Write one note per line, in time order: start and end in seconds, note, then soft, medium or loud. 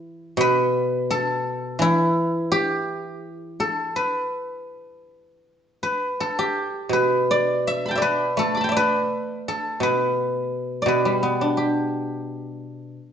0.00 0.39 E3 soft
0.00 0.99 E4 medium
0.37 1.79 B2 medium
0.37 2.45 B4 medium
1.11 3.30 A4 medium
1.79 3.95 E3 soft
1.79 4.43 E4 medium
2.52 4.87 G4 medium
3.60 5.80 A4 medium
3.96 5.83 B4 medium
5.83 6.93 B4 medium
6.20 8.38 A4 medium
6.39 8.75 G4 medium
6.89 9.11 B2 soft
6.89 8.01 B4 medium
7.31 7.97 D5 medium
7.67 7.95 E5 medium
7.86 8.60 A5 soft
7.86 8.57 B5 soft
7.91 8.64 G5 soft
7.95 8.71 D5 soft
7.95 8.68 E5 soft
8.02 8.76 B4 medium
8.37 10.52 A3 soft
8.37 9.48 A4 medium
8.55 9.92 B5 soft
8.55 9.77 D6 soft
8.61 10.20 G5 soft
8.61 10.06 A5 soft
8.69 10.57 D5 soft
8.69 10.41 E5 soft
8.77 9.83 B4 medium
9.48 11.68 A4 medium
9.80 10.85 B2 soft
9.80 10.88 B4 medium
10.82 12.97 B2 soft
10.82 12.67 D5 soft
10.88 12.93 B4 medium
11.05 12.46 G3 soft
11.23 12.63 B3 soft
11.41 12.81 D4 soft
11.57 12.98 G4 soft